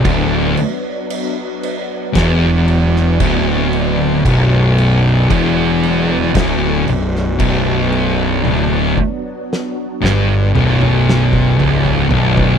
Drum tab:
CC |x-x-x-x-x-x-x-x-|x-x-x-x-x-x-x-x-|----------------|
SD |--------o--o----|--------o--o----|----o-o---o-----|
T1 |----------------|----------------|o---------------|
T2 |----------------|----------------|--------oo------|
FT |----------------|----------------|------------ooo-|
BD |o-------o---o---|o---o---o---o---|--o--------o---o|